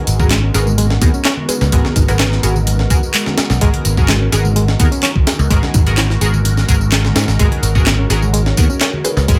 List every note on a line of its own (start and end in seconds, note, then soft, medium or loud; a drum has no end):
0.00 9.39 G#3 medium
0.00 0.17 B3 medium
0.00 7.38 B3 medium
0.00 0.17 F#4 medium
0.00 9.39 F#4 medium
0.00 0.17 G#4 medium
0.00 0.17 A#4 medium
0.00 9.39 A#4 medium
0.07 0.49 G#1 medium
0.07 closed hi-hat medium
0.07 tambourine medium
0.19 0.30 B3 medium
0.19 0.30 F#4 medium
0.19 0.30 G#4 medium
0.19 0.30 A#4 medium
0.19 kick loud
0.19 tambourine soft
0.19 low conga medium
0.30 0.39 G#3 loud
0.30 snare loud
0.30 clap loud
0.30 closed hi-hat medium
0.30 tambourine soft
0.30 high bongo medium
0.30 high conga medium
0.43 0.50 C#4 medium
0.54 0.96 G#1 medium
0.54 0.66 B3 loud
0.54 0.66 F#4 medium
0.54 0.59 G#4 medium
0.54 0.66 G#4 medium
0.54 0.66 A#4 loud
0.54 snare soft
0.54 closed hi-hat medium
0.54 tambourine medium
0.54 high bongo medium
0.66 0.74 G#3 medium
0.66 tambourine soft
0.66 high conga medium
0.78 0.86 G#3 loud
0.78 closed hi-hat medium
0.78 tambourine soft
0.78 low conga medium
0.90 snare medium
0.90 high bongo medium
1.01 1.10 D#2 medium
1.01 1.13 B3 medium
1.01 1.09 B3 medium
1.01 1.09 F#4 medium
1.01 1.09 G#4 medium
1.01 1.09 A#4 medium
1.01 kick loud
1.01 closed hi-hat medium
1.01 tambourine medium
1.01 high conga medium
1.14 1.24 C#4 medium
1.14 tambourine soft
1.14 high bongo medium
1.25 1.33 C#4 medium
1.25 snare loud
1.25 clap loud
1.25 closed hi-hat medium
1.25 tambourine soft
1.37 high conga medium
1.48 1.53 G#4 medium
1.48 1.57 B4 medium
1.48 closed hi-hat medium
1.48 tambourine medium
1.48 high bongo medium
1.61 1.69 C#2 loud
1.61 1.68 B4 medium
1.61 snare soft
1.61 tambourine soft
1.72 1.81 G#1 loud
1.72 1.80 G#3 loud
1.72 2.05 B3 medium
1.72 2.05 F#4 medium
1.72 2.05 G#4 medium
1.72 2.05 A#4 medium
1.72 kick loud
1.72 closed hi-hat medium
1.72 tambourine soft
1.72 high bongo medium
1.85 snare soft
1.85 high conga loud
1.96 2.38 G#1 medium
1.96 2.01 D#4 medium
1.96 kick loud
1.96 closed hi-hat medium
1.96 tambourine medium
2.08 2.19 B3 medium
2.08 2.19 F#4 medium
2.08 2.19 G#4 medium
2.08 2.19 A#4 medium
2.08 2.16 B4 medium
2.08 closed hi-hat soft
2.08 tambourine soft
2.08 high bongo medium
2.08 low conga medium
2.19 2.27 C#4 medium
2.19 2.28 B4 medium
2.19 snare loud
2.19 clap loud
2.19 closed hi-hat medium
2.19 tambourine soft
2.19 high conga medium
2.32 snare soft
2.32 high bongo medium
2.43 2.85 G#1 medium
2.43 2.55 B3 loud
2.43 2.55 F#4 medium
2.43 2.55 G#4 medium
2.43 2.48 G#4 medium
2.43 2.55 A#4 loud
2.43 closed hi-hat medium
2.43 tambourine medium
2.55 tambourine soft
2.55 high conga loud
2.66 closed hi-hat medium
2.66 tambourine soft
2.66 high bongo medium
2.66 low conga medium
2.79 snare soft
2.90 2.98 B3 medium
2.90 2.98 F#4 medium
2.90 2.98 G#4 medium
2.90 2.98 A#4 loud
2.90 kick loud
2.90 closed hi-hat medium
2.90 tambourine medium
2.90 high bongo medium
2.90 high conga medium
3.03 tambourine soft
3.14 3.60 G#3 medium
3.14 clap loud
3.14 closed hi-hat medium
3.14 tambourine soft
3.26 snare medium
3.26 high bongo medium
3.26 high conga loud
3.38 snare loud
3.38 closed hi-hat medium
3.38 tambourine medium
3.50 3.58 B1 medium
3.50 snare medium
3.50 tambourine soft
3.50 high bongo medium
3.61 3.70 G#1 loud
3.61 3.69 G#3 loud
3.61 3.94 B3 medium
3.61 3.94 F#4 medium
3.61 3.94 G#4 medium
3.61 3.94 A#4 loud
3.61 kick loud
3.61 closed hi-hat medium
3.61 tambourine soft
3.73 closed hi-hat soft
3.73 high conga loud
3.85 4.27 G#1 medium
3.85 closed hi-hat medium
3.85 tambourine medium
3.85 high bongo medium
3.97 4.08 B3 medium
3.97 4.08 F#4 medium
3.97 4.08 G#4 medium
3.97 4.08 A#4 medium
3.97 kick medium
3.97 tambourine soft
3.97 low conga medium
4.08 4.16 G#3 loud
4.08 snare loud
4.08 clap loud
4.08 closed hi-hat medium
4.08 tambourine soft
4.08 high bongo soft
4.08 high conga medium
4.21 4.28 C#4 medium
4.32 4.74 G#1 medium
4.32 4.44 B3 loud
4.32 4.44 F#4 medium
4.32 4.44 G#4 medium
4.32 4.37 G#4 medium
4.32 4.44 A#4 loud
4.32 snare medium
4.32 closed hi-hat medium
4.32 tambourine medium
4.44 4.52 G#3 medium
4.44 tambourine soft
4.44 high bongo medium
4.44 high conga loud
4.56 4.64 G#3 loud
4.56 closed hi-hat medium
4.56 tambourine soft
4.56 low conga medium
4.68 snare medium
4.68 high bongo medium
4.79 4.88 D#2 medium
4.79 4.91 B3 medium
4.79 4.87 B3 medium
4.79 4.87 F#4 medium
4.79 4.87 G#4 medium
4.79 4.87 A#4 medium
4.79 kick loud
4.79 closed hi-hat medium
4.79 tambourine medium
4.79 high conga medium
4.92 5.02 C#4 medium
4.92 closed hi-hat soft
4.92 tambourine soft
5.03 5.11 C#4 medium
5.03 clap loud
5.03 closed hi-hat medium
5.03 tambourine soft
5.03 high bongo medium
5.15 kick medium
5.15 high conga loud
5.27 5.31 G#4 medium
5.27 snare loud
5.27 closed hi-hat medium
5.27 tambourine medium
5.27 high bongo medium
5.39 5.47 C#2 loud
5.39 tambourine soft
5.50 5.59 G#1 loud
5.50 5.58 G#3 loud
5.50 5.84 B3 medium
5.50 5.84 F#4 medium
5.50 5.84 G#4 medium
5.50 5.84 A#4 medium
5.50 kick loud
5.50 closed hi-hat medium
5.50 tambourine soft
5.62 snare soft
5.62 high bongo medium
5.62 high conga loud
5.74 6.16 G#1 medium
5.74 5.79 D#4 medium
5.74 kick loud
5.74 closed hi-hat medium
5.74 tambourine medium
5.86 5.97 B3 medium
5.86 5.97 F#4 medium
5.86 5.97 G#4 medium
5.86 5.97 A#4 loud
5.86 closed hi-hat soft
5.86 tambourine soft
5.86 high bongo medium
5.86 low conga medium
5.97 6.05 C#4 medium
5.97 snare loud
5.97 clap loud
5.97 closed hi-hat medium
5.97 tambourine soft
5.97 high conga medium
6.10 snare soft
6.21 6.63 G#1 medium
6.21 6.33 B3 loud
6.21 6.33 F#4 medium
6.21 6.33 G#4 medium
6.21 6.26 G#4 medium
6.21 6.33 A#4 loud
6.21 closed hi-hat medium
6.21 tambourine medium
6.21 high bongo medium
6.33 tambourine soft
6.33 high conga loud
6.44 closed hi-hat medium
6.44 tambourine soft
6.44 high bongo soft
6.44 low conga medium
6.57 snare soft
6.57 tambourine soft
6.68 7.10 G#1 loud
6.68 6.76 B3 medium
6.68 6.76 F#4 medium
6.68 6.76 G#4 medium
6.68 6.76 A#4 medium
6.68 kick loud
6.68 closed hi-hat medium
6.68 tambourine medium
6.68 high conga medium
6.80 tambourine soft
6.80 high bongo medium
6.92 7.38 G#3 medium
6.92 snare loud
6.92 clap loud
6.92 closed hi-hat medium
6.92 tambourine soft
7.04 snare medium
7.04 high bongo soft
7.04 high conga medium
7.16 7.24 G#2 loud
7.16 snare loud
7.16 closed hi-hat medium
7.16 tambourine medium
7.28 7.36 G#1 medium
7.28 snare medium
7.28 tambourine soft
7.39 7.48 G#1 loud
7.39 7.47 G#3 loud
7.39 7.72 B3 medium
7.39 7.72 F#4 medium
7.39 7.72 G#4 medium
7.39 7.72 A#4 loud
7.39 9.39 C#5 medium
7.39 kick loud
7.39 closed hi-hat medium
7.39 tambourine soft
7.51 closed hi-hat soft
7.51 high bongo medium
7.51 high conga loud
7.62 8.04 G#1 medium
7.62 closed hi-hat medium
7.62 tambourine medium
7.75 7.86 B3 medium
7.75 7.86 F#4 medium
7.75 7.86 G#4 medium
7.75 7.86 A#4 loud
7.75 kick medium
7.75 tambourine soft
7.75 low conga medium
7.86 7.94 B3 medium
7.86 snare loud
7.86 clap loud
7.86 closed hi-hat medium
7.86 tambourine soft
7.86 high bongo medium
7.86 high conga medium
7.99 8.06 C#4 medium
8.10 8.52 G#1 medium
8.10 8.22 B3 loud
8.10 8.22 F#4 medium
8.10 8.22 G#4 medium
8.10 8.15 G#4 medium
8.10 8.22 A#4 loud
8.10 snare medium
8.10 closed hi-hat medium
8.10 tambourine medium
8.10 high bongo medium
8.22 8.30 G#3 medium
8.22 tambourine soft
8.22 high conga medium
8.34 8.41 G#3 loud
8.34 closed hi-hat medium
8.34 tambourine soft
8.34 low conga medium
8.46 snare medium
8.46 high bongo medium
8.57 8.66 D#2 medium
8.57 8.65 B3 medium
8.57 8.69 B3 medium
8.57 8.65 F#4 medium
8.57 8.65 G#4 medium
8.57 8.65 A#4 medium
8.57 kick medium
8.57 closed hi-hat medium
8.57 tambourine medium
8.57 high conga medium
8.70 8.80 C#4 medium
8.70 tambourine soft
8.70 high bongo medium
8.81 8.89 C#4 medium
8.81 snare loud
8.81 clap loud
8.81 closed hi-hat medium
8.81 tambourine soft
8.93 high conga loud
9.04 9.09 G#4 medium
9.04 9.13 B4 medium
9.04 closed hi-hat medium
9.04 tambourine medium
9.04 high bongo medium
9.17 9.25 C#2 loud
9.17 9.24 B4 medium
9.17 snare soft
9.17 tambourine soft
9.28 9.37 G#1 loud
9.28 9.36 G#3 loud
9.28 9.39 B3 medium
9.28 9.39 F#4 medium
9.28 9.39 G#4 medium
9.28 9.39 A#4 medium
9.28 kick loud
9.28 closed hi-hat medium
9.28 tambourine soft
9.28 high bongo medium